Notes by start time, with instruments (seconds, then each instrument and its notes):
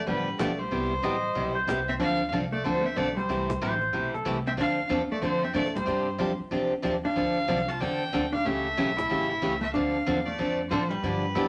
0.07 upright bass A1, steel-string acoustic guitar D3 F3 B3 D4 G4, hollow-body jazz guitar G3, fiddle B4
0.39 upright bass B1, steel-string acoustic guitar D3 F3 B3 D4 G4, hollow-body jazz guitar A3, fiddle D5, cajon slap
0.59 hollow-body jazz guitar G3, fiddle C5
0.71 upright bass C2, steel-string acoustic guitar C3 G3 B3 E4 G4
1.03 upright bass A1, steel-string acoustic guitar C3 G3 B3 E4 G4, pedal steel guitar D#5, cajon slap
1.35 upright bass B1, steel-string acoustic guitar C3 G3 B3 E4 G4
1.55 pedal steel guitar C5
1.67 upright bass C2, steel-string acoustic guitar C3 G3 B3 E4 G4, cajon slap
1.88 hollow-body jazz guitar C4, fiddle E5
1.99 upright bass D2, steel-string acoustic guitar D3 F3 C4 D4 A4, hollow-body jazz guitar D4, fiddle F5, cajon slap
2.31 upright bass C2, steel-string acoustic guitar D3 F3 C4 D4 A4, cajon slap
2.52 hollow-body jazz guitar A3, fiddle D5, cajon slap
2.64 upright bass D2, steel-string acoustic guitar D3 F3 C4 D4 A4, hollow-body jazz guitar F3, fiddle C5, cajon slap
2.84 hollow-body jazz guitar C4, fiddle E5
2.96 upright bass B1, steel-string acoustic guitar D3 F3 C4 D4 A4, hollow-body jazz guitar A3, fiddle D5, cajon slap
3.16 hollow-body jazz guitar G3, fiddle C5, cajon slap
3.29 upright bass C2, steel-string acoustic guitar C3 E3 A3 E4 G4, cajon slap
3.50 cajon slap
3.61 upright bass A1, steel-string acoustic guitar C3 E3 A3 E4 G4, pedal steel guitar C5, cajon slap
3.81 cajon slap
3.93 upright bass B1, steel-string acoustic guitar C3 E3 A3 E4 G4
4.14 pedal steel guitar A4, cajon slap
4.25 upright bass C2, steel-string acoustic guitar C3 E3 A3 E4 G4, cajon slap
4.47 hollow-body jazz guitar C4, fiddle E5
4.57 upright bass D2, steel-string acoustic guitar D3 F3 C4 D4 A4, hollow-body jazz guitar D4, fiddle F5, cajon slap
4.89 upright bass E2, steel-string acoustic guitar D3 F3 C4 D4 A4, cajon slap
5.10 hollow-body jazz guitar A3, fiddle D5, muted upright bass stroke
5.21 upright bass F2, steel-string acoustic guitar D3 F3 C4 D4 A4, hollow-body jazz guitar F3, fiddle C5, cajon slap
5.43 hollow-body jazz guitar C4, fiddle E5
5.54 upright bass A2, steel-string acoustic guitar D3 F3 C4 D4 A4, hollow-body jazz guitar A3, fiddle D5, cajon slap
5.66 cajon slap
5.75 hollow-body jazz guitar G3, fiddle C5, cajon slap
5.86 upright bass G2, steel-string acoustic guitar C3 F3 C4 D4 G4, cajon slap
6.18 upright bass F2, steel-string acoustic guitar C3 F3 C4 D4 G4, cajon slap
6.39 muted upright bass stroke
6.51 upright bass E2, steel-string acoustic guitar C3 F3 C4 D4 G4, cajon slap
6.71 muted upright bass stroke
6.82 upright bass D#2, steel-string acoustic guitar C3 F3 C4 D4 G4, cajon slap
7.05 hollow-body jazz guitar D4, fiddle F5, cajon slap
7.16 upright bass D2, steel-string acoustic guitar D3 F3 C4 D4 A4, cajon slap
7.48 upright bass C2, steel-string acoustic guitar D3 F3 C4 D4 A4, cajon slap
7.68 hollow-body jazz guitar F4, fiddle A5, cajon slap
7.80 upright bass E2, steel-string acoustic guitar D3 F3 C4 D4 A4, hollow-body jazz guitar D4, fiddle G5, cajon slap
8.13 upright bass D2, steel-string acoustic guitar D3 F3 C4 D4 A4, cajon slap
8.33 hollow-body jazz guitar D4, fiddle F5, cajon slap
8.45 upright bass C#2, steel-string acoustic guitar C#3 E3 A3 C#4 G4, hollow-body jazz guitar A3, fiddle E5, cajon slap
8.77 upright bass B1, steel-string acoustic guitar C#3 E3 A3 C#4 G4, cajon slap
8.97 pedal steel guitar E4, cajon slap
9.09 upright bass A1, steel-string acoustic guitar C#3 E3 A3 C#4 G4, cajon slap
9.30 pedal steel guitar E4
9.42 upright bass C#2, steel-string acoustic guitar C#3 E3 A3 C#4 G4, cajon slap
9.61 hollow-body jazz guitar A3, fiddle E5, cajon slap
9.73 upright bass D2, steel-string acoustic guitar D3 F3 C4 D4 A4, hollow-body jazz guitar D4, fiddle F5, cajon slap
10.06 upright bass E2, steel-string acoustic guitar D3 F3 C4 D4 A4, cajon slap
10.26 hollow-body jazz guitar A3, fiddle D5, cajon slap
10.38 upright bass F2, steel-string acoustic guitar D3 F3 C4 D4 A4, cajon slap
10.69 upright bass A2, steel-string acoustic guitar D3 F3 C4 D4 A4, hollow-body jazz guitar F3, fiddle C5, cajon slap
10.89 hollow-body jazz guitar G3, fiddle B4, cajon slap
11.03 upright bass G2, steel-string acoustic guitar D3 F3 B3 D4 G4, cajon slap
11.35 upright bass F2, steel-string acoustic guitar D3 F3 B3 D4 G4, pedal steel guitar E4, cajon slap